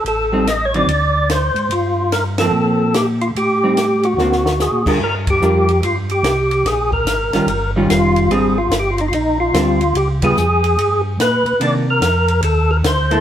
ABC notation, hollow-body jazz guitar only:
X:1
M:4/4
L:1/8
Q:"Swing" 1/4=145
K:Cmix
V:1 name="Hollow-body jazz guitar"
z [G,C_E] z [D,^F,CE] z4 | z3 [F,B,C]3 z2 | z [G,C_E] z2 [D,^A,C^F] z2 [G,D^E^A] | z2 [G,DFB] z4 z |
z3 [_E,G,_DF] z [E,G,DF]3 | [G,CD] z4 z [G,CD] z | z [G,=B,^E] z6 | [_E,B,D] z6 [B,=EA] |]